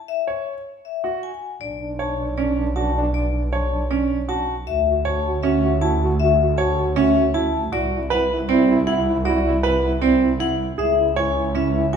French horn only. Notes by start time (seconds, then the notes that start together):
1.61 D4
1.80 D4
1.99 D4
2.18 D4
2.37 D4
2.56 D4
2.76 D4
2.94 D4
3.13 D4
3.33 D4
3.52 D4
3.71 D4
3.91 D4
4.09 D4
4.29 D4
4.67 F#4
4.87 F#4
5.05 F#4
5.24 F#4
5.43 F#4
5.62 F#4
5.81 F#4
6.00 F#4
6.19 F#4
6.38 F#4
6.57 F#4
6.76 F#4
6.96 F#4
7.16 F#4
7.34 F#4
7.73 E4
7.92 E4
8.11 E4
8.30 E4
8.50 E4
8.68 E4
8.88 E4
9.07 E4
9.26 E4
9.45 E4
9.64 E4
9.83 E4
10.02 E4
10.22 E4
10.40 E4
10.79 E4
10.97 E4
11.16 E4
11.35 E4
11.54 E4
11.73 E4
11.93 E4